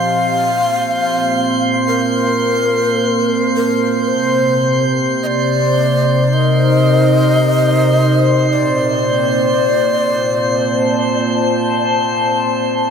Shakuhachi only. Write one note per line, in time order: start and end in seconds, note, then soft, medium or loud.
0.00 1.80 F5 loud
1.87 3.47 A#4 medium
3.55 4.09 A#4 medium
4.08 4.90 C5 medium
5.23 6.35 D5 loud
5.23 5.28 D#5 medium
6.33 8.54 D#5 loud
8.53 11.84 D5 medium